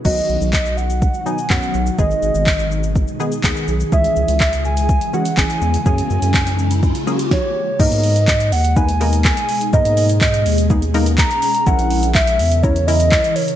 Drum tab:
CC |x---------------|----------------|----------------|----------------|
HH |----------------|----------------|-x-x-x-x-x-x-x-x|-x-x-x-x-x-x----|
SH |xxxxxxxxxxxxxxxx|xxxxxxxxxxxxxxxx|xxxxxxxxxxxxxxxx|xxxxxxxxxxxx----|
CP |----x-------x---|----x-------x---|----x-------x---|----x-----------|
SD |----------------|----------------|----------------|------------o---|
BD |o---o---o---o---|o---o---o---o---|o---o---o---o---|o---o---o---o---|

CC |x---------------|----------------|----------------|
HH |-xox-xox-xox-xox|-xox-xox-xox-xox|-xox-xox-xox-xox|
SH |xxxxxxxxxxxxxxxx|xxxxxxxxxxxxxxxx|xxxxxxxxxxxxxxxx|
CP |----x-------x---|----x-------x---|----x-------x---|
SD |----------------|----------------|----------------|
BD |o---o---o---o---|o---o---o---o---|o---o---o---o---|